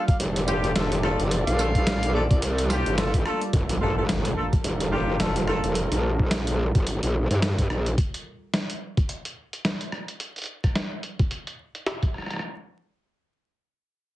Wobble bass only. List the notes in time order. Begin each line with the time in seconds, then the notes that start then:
0.20 F1
0.75 F1
1.19 F1
1.47 A#1
2.31 C2
2.86 G1
3.53 G1
3.81 G1
4.64 F1
5.20 F1
5.64 F1
5.91 A#1
6.75 G1
7.03 A#1
7.30 G2
7.70 A#1